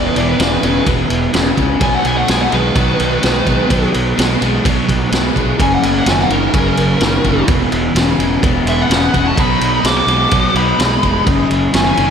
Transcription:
Already playing: E2 B2 B3 E4 G#4 B4
0.05 D#3 B4
0.16 E1 E3 D5, ride
0.28 D#3 B4
0.39 E1 E2 C#3 E3 D5, snare, ride
0.53 D#3 B4
0.63 E1 E2 C#3 D#3 B4, ride
0.86 E1 E2 B2, kick, ride
1.10 E1, ride
1.33 E1 E2 C#3, snare, ride
1.57 C#2 E2 C#3, kick, ride
1.80 B1 B2 F#3 B3 D#4 F#4 B4 G#5, kick, ride
1.95 A3 F#5
2.05 B1 B3 G#5, ride
2.17 A3 F#5
2.28 B1 B2 G#3 B3 G#5, snare, ride
2.42 A3 F#5
2.52 B1 B2 D#3 G#3 B4, ride
2.75 B1 B2 F#3, kick, ride
3.00 B1, ride
3.23 B1 B2 G#3, snare, ride
3.47 B1 B2 G#3, kick, ride
3.70 B1 B2 F#3, kick, ride
3.94 B1, ride
4.17 B1 B2 G#3, snare, ride
4.41 B1 B2 G#3, ride
4.65 B1 B2 F#3, kick, ride
4.89 B1, kick, ride
5.12 B1 B2 G#3, snare, ride
5.35 B1 B2 G#3, kick, ride
5.58 F#1 F#2 C#3 A#3 C#4 F#4 A#4 G#5, kick, ride
5.73 A#3 F#5
5.83 F#1 B3 G#5, ride
5.96 A#3 F#5
6.06 F#1 F#2 D#3 C#4 G#5, snare, ride
6.21 A#3 F#5
6.29 F#1 F#2 C#3 D#3 A#4, ride
6.54 F#1 F#2 C#3, kick, ride
6.77 F#1, ride
7.01 F#1 F#2 D#3, snare, ride
7.24 F#1 F#2 D#3, kick, ride
7.47 E1 E2 B2 B3 E4 G#4 B4, kick, ride
7.71 E1, ride
7.95 E1 E2 C#3, snare, ride
8.18 E1 E2 C#3, ride
8.42 E1 E2 B2, kick, ride
8.65 E1 G#3 E5, ride
8.79 B3 F#5
8.89 E1 E2 C#3, snare, ride
9.13 E1 E2 C#3, kick, ride
9.26 C#4 A5
9.36 B1 B2 F#3 B3 D#4 F#4 B4 B5, kick, ride
9.61 B1, ride
9.83 B1 B2 G#3 F#4 D6, snare, ride
9.98 F#4 D6
10.07 B1 B2 G#3, ride
10.31 B1 B2 F#3, kick, ride
10.54 B1 D#4 B5, ride
10.79 B1 B2 G#3, snare, ride
11.02 F1 B2 G#3, kick, ride
11.25 F#1 F#2 C#3 B3 D4 G4 B4, kick, ride
11.44 F#3 C#4 F#4 A#4
11.50 F#1, ride
11.73 F#1 F#2 D#3 C#4 G#5, snare, ride
11.87 C#4 G#5
11.97 F#1 F#2 D#3, ride

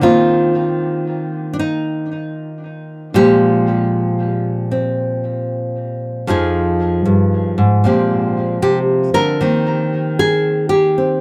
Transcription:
0.01 D#3 A#3 C4 F4
1.53 D4
1.59 D#4
3.14 A#2 F3 G#3 C4 G4
4.71 C4
6.27 F2 F3 D#4 G#4
7.05 G2
7.58 G#2
7.84 A#2 F3 G#3 C4 G4
8.62 C3 G4
9.14 D3 A#4
9.41 D#3 A#3 C4
10.19 G#4
10.69 G4
10.98 C4

